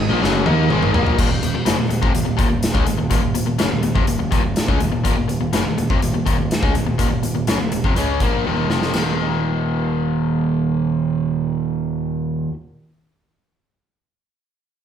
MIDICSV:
0, 0, Header, 1, 6, 480
1, 0, Start_track
1, 0, Key_signature, -6, "minor"
1, 0, Tempo, 481928
1, 1179, Time_signature, 4, 2, 24, 8
1, 5025, Tempo, 486224
1, 14703, End_track
2, 0, Start_track
2, 0, Title_t, "Tonewheel organ"
2, 0, Program_c, 0, 16
2, 0, Note_on_c, 0, 56, 75
2, 0, Note_on_c, 0, 63, 79
2, 0, Note_on_c, 0, 75, 76
2, 1137, Note_off_c, 0, 63, 0
2, 1141, Note_off_c, 0, 56, 0
2, 1141, Note_off_c, 0, 75, 0
2, 14703, End_track
3, 0, Start_track
3, 0, Title_t, "Overdriven electric guitar"
3, 0, Program_c, 1, 29
3, 2, Note_on_c, 1, 51, 72
3, 104, Note_off_c, 1, 51, 0
3, 14703, End_track
4, 0, Start_track
4, 0, Title_t, "Overdriven electric guitar"
4, 0, Program_c, 2, 29
4, 91, Note_on_c, 2, 46, 97
4, 94, Note_on_c, 2, 53, 105
4, 210, Note_off_c, 2, 46, 0
4, 211, Note_off_c, 2, 53, 0
4, 211, Note_on_c, 2, 42, 101
4, 217, Note_on_c, 2, 49, 118
4, 220, Note_on_c, 2, 54, 106
4, 448, Note_off_c, 2, 49, 0
4, 449, Note_off_c, 2, 42, 0
4, 452, Note_on_c, 2, 51, 89
4, 453, Note_off_c, 2, 54, 0
4, 457, Note_on_c, 2, 58, 94
4, 462, Note_on_c, 2, 63, 101
4, 689, Note_off_c, 2, 51, 0
4, 691, Note_off_c, 2, 58, 0
4, 694, Note_off_c, 2, 63, 0
4, 697, Note_on_c, 2, 44, 95
4, 701, Note_on_c, 2, 51, 100
4, 705, Note_on_c, 2, 56, 105
4, 928, Note_off_c, 2, 44, 0
4, 932, Note_on_c, 2, 46, 99
4, 933, Note_off_c, 2, 51, 0
4, 935, Note_off_c, 2, 56, 0
4, 939, Note_on_c, 2, 53, 88
4, 941, Note_on_c, 2, 58, 112
4, 1168, Note_off_c, 2, 46, 0
4, 1172, Note_off_c, 2, 53, 0
4, 1172, Note_off_c, 2, 58, 0
4, 1177, Note_on_c, 2, 39, 88
4, 1183, Note_on_c, 2, 46, 89
4, 1281, Note_off_c, 2, 39, 0
4, 1293, Note_off_c, 2, 46, 0
4, 1293, Note_on_c, 2, 39, 68
4, 1303, Note_on_c, 2, 46, 67
4, 1410, Note_off_c, 2, 39, 0
4, 1410, Note_off_c, 2, 46, 0
4, 1422, Note_on_c, 2, 39, 58
4, 1422, Note_on_c, 2, 46, 63
4, 1522, Note_off_c, 2, 39, 0
4, 1529, Note_off_c, 2, 46, 0
4, 1534, Note_on_c, 2, 39, 62
4, 1541, Note_on_c, 2, 46, 67
4, 1642, Note_off_c, 2, 39, 0
4, 1645, Note_off_c, 2, 46, 0
4, 1646, Note_on_c, 2, 42, 90
4, 1649, Note_on_c, 2, 49, 105
4, 1765, Note_off_c, 2, 42, 0
4, 1766, Note_off_c, 2, 49, 0
4, 1769, Note_on_c, 2, 39, 60
4, 1772, Note_on_c, 2, 46, 74
4, 1873, Note_off_c, 2, 39, 0
4, 1879, Note_off_c, 2, 46, 0
4, 1885, Note_on_c, 2, 39, 61
4, 1891, Note_on_c, 2, 46, 69
4, 2002, Note_off_c, 2, 39, 0
4, 2006, Note_on_c, 2, 41, 88
4, 2007, Note_off_c, 2, 46, 0
4, 2011, Note_on_c, 2, 48, 107
4, 2124, Note_off_c, 2, 41, 0
4, 2127, Note_off_c, 2, 48, 0
4, 2134, Note_on_c, 2, 39, 61
4, 2135, Note_on_c, 2, 46, 76
4, 2229, Note_off_c, 2, 39, 0
4, 2233, Note_off_c, 2, 46, 0
4, 2241, Note_on_c, 2, 39, 63
4, 2245, Note_on_c, 2, 46, 69
4, 2345, Note_off_c, 2, 39, 0
4, 2350, Note_off_c, 2, 46, 0
4, 2357, Note_on_c, 2, 39, 83
4, 2362, Note_on_c, 2, 46, 85
4, 2468, Note_off_c, 2, 39, 0
4, 2474, Note_off_c, 2, 46, 0
4, 2480, Note_on_c, 2, 39, 54
4, 2486, Note_on_c, 2, 46, 59
4, 2681, Note_off_c, 2, 39, 0
4, 2684, Note_off_c, 2, 46, 0
4, 2726, Note_on_c, 2, 49, 91
4, 2731, Note_on_c, 2, 56, 100
4, 2845, Note_off_c, 2, 49, 0
4, 2845, Note_on_c, 2, 39, 59
4, 2847, Note_off_c, 2, 56, 0
4, 2852, Note_on_c, 2, 46, 65
4, 2950, Note_off_c, 2, 39, 0
4, 2957, Note_off_c, 2, 46, 0
4, 2962, Note_on_c, 2, 39, 57
4, 2969, Note_on_c, 2, 46, 69
4, 3073, Note_off_c, 2, 39, 0
4, 3078, Note_off_c, 2, 46, 0
4, 3085, Note_on_c, 2, 39, 84
4, 3090, Note_on_c, 2, 46, 93
4, 3194, Note_off_c, 2, 39, 0
4, 3200, Note_off_c, 2, 46, 0
4, 3206, Note_on_c, 2, 39, 65
4, 3212, Note_on_c, 2, 46, 66
4, 3318, Note_off_c, 2, 39, 0
4, 3321, Note_off_c, 2, 46, 0
4, 3330, Note_on_c, 2, 39, 63
4, 3333, Note_on_c, 2, 46, 67
4, 3434, Note_off_c, 2, 39, 0
4, 3441, Note_off_c, 2, 46, 0
4, 3446, Note_on_c, 2, 39, 53
4, 3453, Note_on_c, 2, 46, 56
4, 3565, Note_off_c, 2, 39, 0
4, 3569, Note_on_c, 2, 42, 92
4, 3572, Note_off_c, 2, 46, 0
4, 3576, Note_on_c, 2, 49, 101
4, 3687, Note_off_c, 2, 42, 0
4, 3690, Note_off_c, 2, 49, 0
4, 3693, Note_on_c, 2, 39, 62
4, 3697, Note_on_c, 2, 46, 67
4, 3796, Note_off_c, 2, 39, 0
4, 3800, Note_off_c, 2, 46, 0
4, 3808, Note_on_c, 2, 39, 60
4, 3812, Note_on_c, 2, 46, 65
4, 3925, Note_off_c, 2, 39, 0
4, 3929, Note_on_c, 2, 41, 88
4, 3932, Note_off_c, 2, 46, 0
4, 3936, Note_on_c, 2, 48, 96
4, 4048, Note_off_c, 2, 41, 0
4, 4051, Note_off_c, 2, 48, 0
4, 4058, Note_on_c, 2, 39, 61
4, 4058, Note_on_c, 2, 46, 65
4, 4161, Note_off_c, 2, 39, 0
4, 4163, Note_off_c, 2, 46, 0
4, 4173, Note_on_c, 2, 39, 60
4, 4175, Note_on_c, 2, 46, 63
4, 4277, Note_off_c, 2, 39, 0
4, 4283, Note_off_c, 2, 46, 0
4, 4289, Note_on_c, 2, 39, 74
4, 4295, Note_on_c, 2, 46, 81
4, 4409, Note_off_c, 2, 39, 0
4, 4411, Note_off_c, 2, 46, 0
4, 4419, Note_on_c, 2, 39, 55
4, 4422, Note_on_c, 2, 46, 58
4, 4613, Note_off_c, 2, 39, 0
4, 4615, Note_off_c, 2, 46, 0
4, 4662, Note_on_c, 2, 49, 90
4, 4670, Note_on_c, 2, 56, 109
4, 4776, Note_off_c, 2, 49, 0
4, 4776, Note_on_c, 2, 39, 59
4, 4780, Note_off_c, 2, 56, 0
4, 4781, Note_on_c, 2, 46, 66
4, 4884, Note_off_c, 2, 39, 0
4, 4885, Note_off_c, 2, 46, 0
4, 4896, Note_on_c, 2, 39, 57
4, 4897, Note_on_c, 2, 46, 65
4, 5002, Note_off_c, 2, 39, 0
4, 5009, Note_off_c, 2, 46, 0
4, 5014, Note_on_c, 2, 39, 81
4, 5021, Note_on_c, 2, 46, 96
4, 5132, Note_off_c, 2, 39, 0
4, 5135, Note_off_c, 2, 46, 0
4, 5142, Note_on_c, 2, 39, 58
4, 5146, Note_on_c, 2, 46, 72
4, 5242, Note_off_c, 2, 39, 0
4, 5248, Note_off_c, 2, 46, 0
4, 5254, Note_on_c, 2, 39, 58
4, 5260, Note_on_c, 2, 46, 64
4, 5369, Note_off_c, 2, 39, 0
4, 5369, Note_off_c, 2, 46, 0
4, 5381, Note_on_c, 2, 39, 56
4, 5381, Note_on_c, 2, 46, 62
4, 5496, Note_off_c, 2, 39, 0
4, 5500, Note_on_c, 2, 42, 78
4, 5501, Note_off_c, 2, 46, 0
4, 5505, Note_on_c, 2, 49, 93
4, 5613, Note_off_c, 2, 42, 0
4, 5617, Note_off_c, 2, 49, 0
4, 5617, Note_on_c, 2, 39, 66
4, 5623, Note_on_c, 2, 46, 69
4, 5735, Note_off_c, 2, 39, 0
4, 5737, Note_off_c, 2, 46, 0
4, 5747, Note_on_c, 2, 39, 62
4, 5749, Note_on_c, 2, 46, 63
4, 5865, Note_off_c, 2, 39, 0
4, 5865, Note_off_c, 2, 46, 0
4, 5869, Note_on_c, 2, 41, 86
4, 5873, Note_on_c, 2, 48, 89
4, 5979, Note_off_c, 2, 41, 0
4, 5981, Note_off_c, 2, 48, 0
4, 5992, Note_on_c, 2, 39, 63
4, 5993, Note_on_c, 2, 46, 68
4, 6094, Note_off_c, 2, 39, 0
4, 6097, Note_off_c, 2, 46, 0
4, 6106, Note_on_c, 2, 39, 57
4, 6109, Note_on_c, 2, 46, 70
4, 6209, Note_off_c, 2, 39, 0
4, 6214, Note_off_c, 2, 46, 0
4, 6220, Note_on_c, 2, 39, 84
4, 6225, Note_on_c, 2, 46, 93
4, 6333, Note_off_c, 2, 46, 0
4, 6334, Note_off_c, 2, 39, 0
4, 6345, Note_on_c, 2, 39, 54
4, 6345, Note_on_c, 2, 46, 60
4, 6535, Note_off_c, 2, 39, 0
4, 6535, Note_off_c, 2, 46, 0
4, 6583, Note_on_c, 2, 49, 90
4, 6593, Note_on_c, 2, 56, 102
4, 6695, Note_off_c, 2, 49, 0
4, 6700, Note_off_c, 2, 56, 0
4, 6702, Note_on_c, 2, 39, 55
4, 6706, Note_on_c, 2, 46, 71
4, 6809, Note_off_c, 2, 39, 0
4, 6809, Note_off_c, 2, 46, 0
4, 6820, Note_on_c, 2, 46, 61
4, 6821, Note_on_c, 2, 39, 53
4, 6923, Note_off_c, 2, 39, 0
4, 6930, Note_off_c, 2, 46, 0
4, 6935, Note_on_c, 2, 39, 88
4, 6942, Note_on_c, 2, 46, 86
4, 7045, Note_off_c, 2, 39, 0
4, 7048, Note_off_c, 2, 46, 0
4, 7057, Note_on_c, 2, 39, 60
4, 7060, Note_on_c, 2, 46, 63
4, 7166, Note_off_c, 2, 39, 0
4, 7166, Note_off_c, 2, 46, 0
4, 7178, Note_on_c, 2, 39, 53
4, 7178, Note_on_c, 2, 46, 65
4, 7285, Note_off_c, 2, 39, 0
4, 7288, Note_off_c, 2, 46, 0
4, 7297, Note_on_c, 2, 39, 54
4, 7300, Note_on_c, 2, 46, 62
4, 7419, Note_off_c, 2, 39, 0
4, 7421, Note_off_c, 2, 46, 0
4, 7423, Note_on_c, 2, 42, 87
4, 7430, Note_on_c, 2, 49, 94
4, 7535, Note_off_c, 2, 42, 0
4, 7538, Note_off_c, 2, 49, 0
4, 7540, Note_on_c, 2, 39, 58
4, 7545, Note_on_c, 2, 46, 65
4, 7651, Note_off_c, 2, 39, 0
4, 7658, Note_off_c, 2, 46, 0
4, 7663, Note_on_c, 2, 39, 57
4, 7670, Note_on_c, 2, 46, 63
4, 7781, Note_off_c, 2, 39, 0
4, 7785, Note_on_c, 2, 41, 87
4, 7786, Note_off_c, 2, 46, 0
4, 7795, Note_on_c, 2, 48, 89
4, 7896, Note_off_c, 2, 41, 0
4, 7901, Note_off_c, 2, 48, 0
4, 7909, Note_on_c, 2, 49, 84
4, 7915, Note_on_c, 2, 56, 82
4, 7918, Note_on_c, 2, 61, 93
4, 8138, Note_off_c, 2, 49, 0
4, 8141, Note_off_c, 2, 56, 0
4, 8143, Note_off_c, 2, 61, 0
4, 8153, Note_on_c, 2, 46, 79
4, 8157, Note_on_c, 2, 53, 78
4, 8163, Note_on_c, 2, 58, 94
4, 8381, Note_off_c, 2, 46, 0
4, 8382, Note_off_c, 2, 53, 0
4, 8385, Note_off_c, 2, 58, 0
4, 8395, Note_on_c, 2, 39, 84
4, 8401, Note_on_c, 2, 46, 81
4, 8406, Note_on_c, 2, 51, 90
4, 8622, Note_off_c, 2, 39, 0
4, 8624, Note_off_c, 2, 46, 0
4, 8627, Note_off_c, 2, 51, 0
4, 8630, Note_on_c, 2, 41, 81
4, 8636, Note_on_c, 2, 48, 76
4, 8640, Note_on_c, 2, 53, 90
4, 8859, Note_off_c, 2, 41, 0
4, 8862, Note_off_c, 2, 48, 0
4, 8864, Note_off_c, 2, 53, 0
4, 8864, Note_on_c, 2, 39, 69
4, 8886, Note_on_c, 2, 46, 81
4, 8905, Note_on_c, 2, 51, 81
4, 12382, Note_off_c, 2, 39, 0
4, 12405, Note_off_c, 2, 46, 0
4, 12424, Note_off_c, 2, 51, 0
4, 14703, End_track
5, 0, Start_track
5, 0, Title_t, "Picked electric bass"
5, 0, Program_c, 3, 34
5, 100, Note_on_c, 3, 34, 92
5, 213, Note_off_c, 3, 34, 0
5, 221, Note_on_c, 3, 30, 107
5, 444, Note_off_c, 3, 30, 0
5, 468, Note_on_c, 3, 39, 99
5, 687, Note_off_c, 3, 39, 0
5, 703, Note_on_c, 3, 32, 90
5, 925, Note_off_c, 3, 32, 0
5, 945, Note_on_c, 3, 34, 96
5, 1165, Note_off_c, 3, 34, 0
5, 1181, Note_on_c, 3, 27, 87
5, 1291, Note_off_c, 3, 27, 0
5, 1297, Note_on_c, 3, 27, 77
5, 1409, Note_off_c, 3, 27, 0
5, 1419, Note_on_c, 3, 27, 72
5, 1530, Note_off_c, 3, 27, 0
5, 1537, Note_on_c, 3, 27, 72
5, 1649, Note_off_c, 3, 27, 0
5, 1654, Note_on_c, 3, 30, 88
5, 1767, Note_off_c, 3, 30, 0
5, 1772, Note_on_c, 3, 27, 70
5, 1886, Note_off_c, 3, 27, 0
5, 1891, Note_on_c, 3, 27, 77
5, 2005, Note_off_c, 3, 27, 0
5, 2020, Note_on_c, 3, 29, 83
5, 2126, Note_off_c, 3, 29, 0
5, 2132, Note_on_c, 3, 27, 84
5, 2246, Note_off_c, 3, 27, 0
5, 2256, Note_on_c, 3, 27, 76
5, 2368, Note_off_c, 3, 27, 0
5, 2379, Note_on_c, 3, 27, 89
5, 2490, Note_off_c, 3, 27, 0
5, 2502, Note_on_c, 3, 27, 81
5, 2723, Note_off_c, 3, 27, 0
5, 2736, Note_on_c, 3, 37, 82
5, 2848, Note_off_c, 3, 37, 0
5, 2860, Note_on_c, 3, 27, 78
5, 2970, Note_off_c, 3, 27, 0
5, 2983, Note_on_c, 3, 27, 74
5, 3088, Note_off_c, 3, 27, 0
5, 3094, Note_on_c, 3, 27, 88
5, 3208, Note_off_c, 3, 27, 0
5, 3218, Note_on_c, 3, 27, 76
5, 3330, Note_off_c, 3, 27, 0
5, 3340, Note_on_c, 3, 27, 70
5, 3451, Note_off_c, 3, 27, 0
5, 3456, Note_on_c, 3, 27, 76
5, 3569, Note_off_c, 3, 27, 0
5, 3583, Note_on_c, 3, 30, 90
5, 3693, Note_off_c, 3, 30, 0
5, 3702, Note_on_c, 3, 27, 74
5, 3813, Note_off_c, 3, 27, 0
5, 3819, Note_on_c, 3, 27, 79
5, 3931, Note_off_c, 3, 27, 0
5, 3936, Note_on_c, 3, 29, 83
5, 4050, Note_off_c, 3, 29, 0
5, 4066, Note_on_c, 3, 27, 80
5, 4175, Note_off_c, 3, 27, 0
5, 4186, Note_on_c, 3, 27, 77
5, 4296, Note_off_c, 3, 27, 0
5, 4303, Note_on_c, 3, 27, 88
5, 4414, Note_off_c, 3, 27, 0
5, 4427, Note_on_c, 3, 27, 82
5, 4649, Note_off_c, 3, 27, 0
5, 4668, Note_on_c, 3, 37, 81
5, 4778, Note_off_c, 3, 37, 0
5, 4786, Note_on_c, 3, 27, 80
5, 4897, Note_off_c, 3, 27, 0
5, 4908, Note_on_c, 3, 27, 74
5, 5018, Note_off_c, 3, 27, 0
5, 5028, Note_on_c, 3, 27, 93
5, 5138, Note_off_c, 3, 27, 0
5, 5150, Note_on_c, 3, 27, 71
5, 5258, Note_off_c, 3, 27, 0
5, 5270, Note_on_c, 3, 27, 73
5, 5379, Note_off_c, 3, 27, 0
5, 5390, Note_on_c, 3, 27, 74
5, 5499, Note_off_c, 3, 27, 0
5, 5514, Note_on_c, 3, 30, 81
5, 5620, Note_off_c, 3, 30, 0
5, 5633, Note_on_c, 3, 27, 70
5, 5740, Note_off_c, 3, 27, 0
5, 5752, Note_on_c, 3, 27, 75
5, 5859, Note_off_c, 3, 27, 0
5, 5870, Note_on_c, 3, 29, 78
5, 5978, Note_off_c, 3, 29, 0
5, 5989, Note_on_c, 3, 27, 77
5, 6097, Note_off_c, 3, 27, 0
5, 6104, Note_on_c, 3, 27, 74
5, 6214, Note_off_c, 3, 27, 0
5, 6231, Note_on_c, 3, 27, 81
5, 6338, Note_off_c, 3, 27, 0
5, 6345, Note_on_c, 3, 27, 78
5, 6567, Note_off_c, 3, 27, 0
5, 6584, Note_on_c, 3, 37, 85
5, 6694, Note_off_c, 3, 37, 0
5, 6700, Note_on_c, 3, 27, 74
5, 6812, Note_off_c, 3, 27, 0
5, 6821, Note_on_c, 3, 27, 71
5, 6933, Note_off_c, 3, 27, 0
5, 6943, Note_on_c, 3, 27, 88
5, 7054, Note_off_c, 3, 27, 0
5, 7062, Note_on_c, 3, 27, 67
5, 7173, Note_off_c, 3, 27, 0
5, 7183, Note_on_c, 3, 27, 71
5, 7294, Note_off_c, 3, 27, 0
5, 7310, Note_on_c, 3, 27, 68
5, 7417, Note_off_c, 3, 27, 0
5, 7427, Note_on_c, 3, 30, 78
5, 7536, Note_off_c, 3, 30, 0
5, 7544, Note_on_c, 3, 27, 68
5, 7655, Note_off_c, 3, 27, 0
5, 7666, Note_on_c, 3, 27, 70
5, 7776, Note_off_c, 3, 27, 0
5, 7783, Note_on_c, 3, 29, 76
5, 7894, Note_off_c, 3, 29, 0
5, 7902, Note_on_c, 3, 37, 87
5, 8125, Note_off_c, 3, 37, 0
5, 8140, Note_on_c, 3, 34, 82
5, 8364, Note_off_c, 3, 34, 0
5, 8383, Note_on_c, 3, 27, 75
5, 8606, Note_off_c, 3, 27, 0
5, 8618, Note_on_c, 3, 29, 80
5, 8843, Note_off_c, 3, 29, 0
5, 8859, Note_on_c, 3, 27, 86
5, 12338, Note_off_c, 3, 27, 0
5, 14703, End_track
6, 0, Start_track
6, 0, Title_t, "Drums"
6, 235, Note_on_c, 9, 38, 69
6, 335, Note_off_c, 9, 38, 0
6, 459, Note_on_c, 9, 48, 85
6, 558, Note_off_c, 9, 48, 0
6, 700, Note_on_c, 9, 47, 89
6, 800, Note_off_c, 9, 47, 0
6, 823, Note_on_c, 9, 45, 78
6, 923, Note_off_c, 9, 45, 0
6, 940, Note_on_c, 9, 43, 110
6, 1040, Note_off_c, 9, 43, 0
6, 1061, Note_on_c, 9, 43, 101
6, 1160, Note_off_c, 9, 43, 0
6, 1181, Note_on_c, 9, 36, 100
6, 1182, Note_on_c, 9, 49, 97
6, 1280, Note_off_c, 9, 36, 0
6, 1282, Note_off_c, 9, 49, 0
6, 1422, Note_on_c, 9, 42, 61
6, 1521, Note_off_c, 9, 42, 0
6, 1655, Note_on_c, 9, 42, 81
6, 1666, Note_on_c, 9, 38, 109
6, 1755, Note_off_c, 9, 42, 0
6, 1766, Note_off_c, 9, 38, 0
6, 1898, Note_on_c, 9, 42, 61
6, 1997, Note_off_c, 9, 42, 0
6, 2019, Note_on_c, 9, 36, 101
6, 2118, Note_off_c, 9, 36, 0
6, 2138, Note_on_c, 9, 42, 84
6, 2238, Note_off_c, 9, 42, 0
6, 2377, Note_on_c, 9, 36, 104
6, 2378, Note_on_c, 9, 42, 64
6, 2477, Note_off_c, 9, 36, 0
6, 2477, Note_off_c, 9, 42, 0
6, 2616, Note_on_c, 9, 42, 80
6, 2627, Note_on_c, 9, 38, 99
6, 2715, Note_off_c, 9, 42, 0
6, 2726, Note_off_c, 9, 38, 0
6, 2736, Note_on_c, 9, 36, 96
6, 2836, Note_off_c, 9, 36, 0
6, 2854, Note_on_c, 9, 42, 69
6, 2953, Note_off_c, 9, 42, 0
6, 3094, Note_on_c, 9, 42, 84
6, 3096, Note_on_c, 9, 36, 96
6, 3194, Note_off_c, 9, 42, 0
6, 3196, Note_off_c, 9, 36, 0
6, 3336, Note_on_c, 9, 42, 65
6, 3436, Note_off_c, 9, 42, 0
6, 3573, Note_on_c, 9, 42, 84
6, 3584, Note_on_c, 9, 38, 105
6, 3673, Note_off_c, 9, 42, 0
6, 3684, Note_off_c, 9, 38, 0
6, 3812, Note_on_c, 9, 42, 55
6, 3912, Note_off_c, 9, 42, 0
6, 3939, Note_on_c, 9, 36, 104
6, 4039, Note_off_c, 9, 36, 0
6, 4057, Note_on_c, 9, 42, 80
6, 4156, Note_off_c, 9, 42, 0
6, 4302, Note_on_c, 9, 42, 59
6, 4303, Note_on_c, 9, 36, 100
6, 4402, Note_off_c, 9, 42, 0
6, 4403, Note_off_c, 9, 36, 0
6, 4541, Note_on_c, 9, 42, 70
6, 4552, Note_on_c, 9, 38, 96
6, 4641, Note_off_c, 9, 42, 0
6, 4652, Note_off_c, 9, 38, 0
6, 4665, Note_on_c, 9, 36, 96
6, 4765, Note_off_c, 9, 36, 0
6, 4785, Note_on_c, 9, 42, 61
6, 4885, Note_off_c, 9, 42, 0
6, 5028, Note_on_c, 9, 42, 73
6, 5029, Note_on_c, 9, 36, 95
6, 5127, Note_off_c, 9, 36, 0
6, 5127, Note_off_c, 9, 42, 0
6, 5268, Note_on_c, 9, 42, 54
6, 5367, Note_off_c, 9, 42, 0
6, 5504, Note_on_c, 9, 42, 84
6, 5515, Note_on_c, 9, 38, 103
6, 5603, Note_off_c, 9, 42, 0
6, 5613, Note_off_c, 9, 38, 0
6, 5752, Note_on_c, 9, 42, 55
6, 5851, Note_off_c, 9, 42, 0
6, 5869, Note_on_c, 9, 36, 100
6, 5968, Note_off_c, 9, 36, 0
6, 5991, Note_on_c, 9, 42, 76
6, 6090, Note_off_c, 9, 42, 0
6, 6229, Note_on_c, 9, 36, 96
6, 6234, Note_on_c, 9, 42, 63
6, 6328, Note_off_c, 9, 36, 0
6, 6332, Note_off_c, 9, 42, 0
6, 6471, Note_on_c, 9, 42, 75
6, 6482, Note_on_c, 9, 38, 101
6, 6570, Note_off_c, 9, 42, 0
6, 6581, Note_off_c, 9, 38, 0
6, 6586, Note_on_c, 9, 36, 96
6, 6685, Note_off_c, 9, 36, 0
6, 6708, Note_on_c, 9, 42, 59
6, 6806, Note_off_c, 9, 42, 0
6, 6945, Note_on_c, 9, 42, 78
6, 6946, Note_on_c, 9, 36, 89
6, 7043, Note_off_c, 9, 42, 0
6, 7044, Note_off_c, 9, 36, 0
6, 7185, Note_on_c, 9, 42, 62
6, 7284, Note_off_c, 9, 42, 0
6, 7421, Note_on_c, 9, 42, 79
6, 7432, Note_on_c, 9, 38, 99
6, 7520, Note_off_c, 9, 42, 0
6, 7531, Note_off_c, 9, 38, 0
6, 7663, Note_on_c, 9, 42, 60
6, 7762, Note_off_c, 9, 42, 0
6, 7785, Note_on_c, 9, 36, 96
6, 7884, Note_off_c, 9, 36, 0
6, 7906, Note_on_c, 9, 42, 78
6, 8005, Note_off_c, 9, 42, 0
6, 8143, Note_on_c, 9, 36, 91
6, 8143, Note_on_c, 9, 42, 58
6, 8241, Note_off_c, 9, 42, 0
6, 8242, Note_off_c, 9, 36, 0
6, 8385, Note_on_c, 9, 48, 48
6, 8484, Note_off_c, 9, 48, 0
6, 8505, Note_on_c, 9, 47, 55
6, 8604, Note_off_c, 9, 47, 0
6, 8633, Note_on_c, 9, 38, 78
6, 8732, Note_off_c, 9, 38, 0
6, 8752, Note_on_c, 9, 38, 76
6, 8850, Note_off_c, 9, 38, 0
6, 8865, Note_on_c, 9, 55, 73
6, 8875, Note_on_c, 9, 38, 87
6, 8963, Note_off_c, 9, 55, 0
6, 8974, Note_off_c, 9, 38, 0
6, 14703, End_track
0, 0, End_of_file